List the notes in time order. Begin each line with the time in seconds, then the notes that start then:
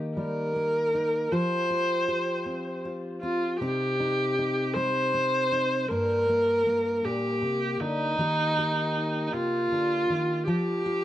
Already playing: D#3 A#3 D#4
0.17 G3 A#4
0.56 A#3
0.95 D#4
1.32 F3 F4 G4 C5
1.70 G4
2.08 G4
2.46 C4
2.85 F4
3.22 C4 F4
3.60 C3 C4 D#4 G4
4.00 D#4
4.39 D#4
4.74 G3 C5
5.52 D#4
5.89 G2 A#3 A#4
6.29 A#3
6.66 A#3
7.05 A#2 G4
7.42 C3
7.80 D3 D#4
8.18 D#3 A#3 D#4 G4
8.59 G4
9.27 D#4
9.33 C3 F4
9.72 D3
10.10 D#3
10.47 F3 F4 G4
10.86 F4